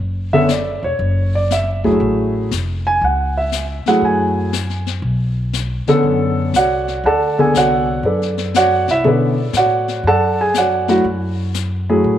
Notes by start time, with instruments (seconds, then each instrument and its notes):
Already playing: upright bass F#1
0.33 grand piano D3 B3 C#4 A4 E5
0.46 grand piano C#5, snare, hi-hat pedal
0.51 grand piano D5
0.83 upright bass E1, grand piano C#5
0.99 upright bass F#1, brush sweep
1.35 grand piano D5
1.51 grand piano E5, snare, hi-hat pedal
1.84 grand piano F#3 A3 E4 G#4, kick
2.00 upright bass A1, brush sweep
2.51 upright bass F1, snare, hi-hat pedal
2.87 grand piano G#5
3.01 upright bass C#2, grand piano F#5, brush sweep
3.38 grand piano E5
3.52 snare, hi-hat pedal
3.86 grand piano F#3 A3 E4 G#4 F#5, muted upright bass stroke, snare
4.01 upright bass F#2, grand piano G#5, brush sweep
4.53 snare, hi-hat pedal
4.70 snare
4.87 snare
5.02 upright bass B1, brush sweep
5.53 snare, hi-hat pedal
5.87 grand piano D3 B3 C#4 A4, muted upright bass stroke, snare
6.03 upright bass F#2, brush sweep
6.53 upright bass C2, grand piano F#4 C#5 D5 F#5, snare, hi-hat pedal
6.88 snare
7.04 upright bass D2, grand piano A4 D5 F#5 A5, brush sweep
7.38 grand piano D3 B3 D4 G#4 A4 G#5
7.54 upright bass C2, grand piano F#4 C#5 D5 F#5, snare, hi-hat pedal
8.03 upright bass F#2, grand piano D4 A4 B4 D5, brush sweep
8.22 snare
8.38 snare
8.54 grand piano F#4 C#5 D5 F#5, snare, hi-hat pedal
8.88 upright bass C2, grand piano E4 E5, snare
9.04 upright bass B2, grand piano D3 B3 C#4 D4 A4 B4 D5, brush sweep
9.08 grand piano A4
9.53 upright bass A2, grand piano F#5, snare, hi-hat pedal
9.57 grand piano F#4 C#5 D5
9.88 snare
10.03 upright bass F#2, grand piano A5, brush sweep
10.08 grand piano A4 D5 F#5
10.41 grand piano G#4 G#5
10.54 grand piano C#5 F#5, snare, hi-hat pedal
10.58 grand piano F#4 D5
10.88 grand piano F#3 A3 E4 F#4, snare
11.04 upright bass F#2, brush sweep
11.54 snare, hi-hat pedal
11.89 grand piano F#3 A3 E4 G#4
12.04 upright bass A2, brush sweep